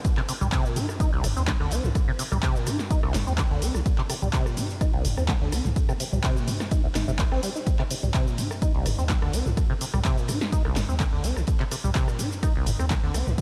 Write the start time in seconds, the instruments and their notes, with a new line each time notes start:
0.04 kick, ride, shaker
0.17 acid bass C3, cross-stick, clap
0.29 acid bass C3, open hi-hat, ride, shaker
0.41 sub bass C2, acid bass G3, mid tom, shaker
0.52 acid bass C3, kick, cross-stick, snare, clap, ride, shaker
0.65 acid bass A#2, shaker
0.76 acid bass D#4, mid tom, open hi-hat, ride, shaker
0.89 cross-stick, snare, shaker
1.00 acid bass D#4, kick, ride, shaker
1.13 acid bass C2, ride
1.24 sub bass G1, acid bass C3, cross-stick, mid tom, open hi-hat, ride, shaker
1.37 sub bass D#2, acid bass C4, snare, shaker
1.47 acid bass D3, kick, snare, clap, ride, shaker
1.60 sub bass D#2, acid bass D3, cross-stick
1.71 sub bass C2, acid bass C4, open hi-hat, ride, shaker
1.84 sub bass C2, acid bass D3, snare, mid tom, shaker
1.95 kick, cross-stick, ride, shaker
2.08 acid bass C3
2.19 acid bass C3, open hi-hat, ride, shaker
2.32 sub bass C2, acid bass G3, cross-stick, mid tom, shaker
2.43 acid bass C3, kick, snare, clap, ride, shaker
2.56 acid bass A#2, shaker
2.66 acid bass D#4, cross-stick, mid tom, open hi-hat, ride, shaker
2.79 snare, shaker
2.91 acid bass D#4, kick, ride, shaker
3.03 acid bass C2, cross-stick
3.14 sub bass G1, acid bass C3, snare, clap, mid tom, open hi-hat, ride, shaker
3.27 sub bass D#2, acid bass C4, shaker
3.38 acid bass D3, kick, cross-stick, snare, clap, ride, shaker
3.51 sub bass D#2, acid bass D3
3.62 sub bass C2, acid bass C4, snare, open hi-hat, ride, shaker
3.75 sub bass C2, acid bass D3, cross-stick, snare, shaker
3.86 kick, ride, shaker
3.98 acid bass C3, clap
4.10 acid bass C3, cross-stick, open hi-hat, ride, shaker
4.22 sub bass C2, acid bass G3, mid tom, shaker
4.33 acid bass C3, kick, snare, clap, ride, shaker
4.46 acid bass A#2, cross-stick, shaker
4.57 acid bass D#4, mid tom, open hi-hat, ride, shaker
4.70 snare, shaker
4.81 acid bass D#4, kick, cross-stick, ride, shaker
4.93 acid bass C2, ride
5.05 sub bass G1, acid bass C3, mid tom, open hi-hat, ride, shaker
5.17 sub bass D#2, acid bass C4, cross-stick, snare, shaker
5.28 acid bass D3, kick, snare, clap, ride, shaker
5.41 sub bass D#2, acid bass D3
5.52 sub bass C2, acid bass C4, cross-stick, open hi-hat, ride, shaker
5.65 sub bass C2, acid bass D3, snare, mid tom, shaker
5.76 kick, ride, shaker
5.89 acid bass C3, cross-stick, shaker
6.00 acid bass C3, open hi-hat, ride, shaker
6.13 sub bass C2, acid bass G3, mid tom, shaker
6.23 acid bass C3, kick, cross-stick, snare, clap, ride, shaker
6.37 acid bass A#2, shaker
6.48 acid bass D#4, mid tom, open hi-hat, ride, shaker
6.60 cross-stick, snare, shaker
6.71 acid bass D#4, kick, ride, shaker
6.84 acid bass C2
6.95 sub bass G1, acid bass D#4, cross-stick, snare, clap, mid tom, open hi-hat, ride, shaker
7.08 sub bass G1, acid bass C3, shaker
7.19 acid bass A#2, kick, snare, clap, ride, shaker
7.32 sub bass A#1, acid bass C4, cross-stick
7.42 acid bass G3, snare, open hi-hat, ride, shaker
7.56 acid bass D#4, snare, shaker
7.66 kick, ride, shaker
7.79 acid bass C3, cross-stick, clap
7.91 acid bass C3, open hi-hat, ride, shaker
8.03 sub bass C2, acid bass G3, mid tom, shaker
8.14 acid bass C3, kick, cross-stick, snare, clap, ride, shaker
8.27 acid bass A#2, shaker
8.38 acid bass D#4, mid tom, open hi-hat, ride, shaker
8.50 cross-stick, snare, shaker
8.62 acid bass D#4, kick, ride, shaker
8.74 acid bass C2, ride
8.86 sub bass G1, acid bass C3, cross-stick, mid tom, open hi-hat, ride, shaker
8.98 sub bass D#2, acid bass C4, snare, shaker
9.09 acid bass D3, kick, snare, clap, ride, shaker
9.22 sub bass D#2, acid bass D3, cross-stick
9.33 sub bass C2, acid bass C4, open hi-hat, ride, shaker
9.46 sub bass C2, acid bass D3, snare, mid tom, shaker
9.57 kick, cross-stick, ride, shaker
9.70 acid bass C3
9.81 acid bass C3, open hi-hat, ride, shaker
9.94 sub bass C2, acid bass G3, cross-stick, mid tom, shaker
10.05 acid bass C3, kick, snare, clap, ride, shaker
10.17 acid bass A#2, shaker
10.28 acid bass D#4, cross-stick, mid tom, open hi-hat, ride, shaker
10.41 snare, shaker
10.52 acid bass D#4, kick, ride, shaker
10.65 acid bass C2, cross-stick
10.76 sub bass G1, acid bass C3, snare, clap, mid tom, open hi-hat, ride, shaker
10.89 sub bass D#2, acid bass C4, shaker
10.99 acid bass D3, kick, cross-stick, snare, clap, ride, shaker
11.13 sub bass D#2, acid bass D3
11.24 sub bass C2, acid bass C4, snare, open hi-hat, ride, shaker
11.37 sub bass C2, acid bass D3, cross-stick, snare, shaker
11.47 kick, ride, shaker
11.60 acid bass C3, clap
11.71 acid bass C3, cross-stick, open hi-hat, ride, shaker
11.84 sub bass C2, acid bass G3, mid tom, shaker
11.95 acid bass C3, kick, snare, clap, ride, shaker
12.08 acid bass A#2, cross-stick, shaker
12.19 acid bass D#4, mid tom, open hi-hat, ride, shaker
12.31 snare, shaker
12.43 acid bass D#4, kick, cross-stick, ride, shaker
12.55 acid bass C2, ride
12.66 sub bass G1, acid bass C3, mid tom, open hi-hat, ride, shaker
12.79 sub bass D#2, acid bass C4, cross-stick, snare, shaker
12.90 acid bass D3, kick, snare, clap, ride, shaker
13.03 sub bass D#2, acid bass D3
13.14 sub bass C2, acid bass C4, cross-stick, open hi-hat, ride, shaker
13.27 sub bass C2, acid bass D3, snare, mid tom, shaker
13.38 kick, ride